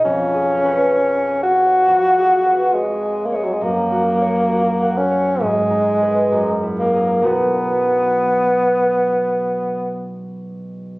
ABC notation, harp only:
X:1
M:4/4
L:1/8
Q:1/4=66
K:B
V:1 name="Harp"
(3[^E,,GBg] G B (3c g c (3E,, G B (3c g c | (3F,, F c (3F f c (3G,, D [GB] (3F,, E [GA] | [B,,,DFB]8 |]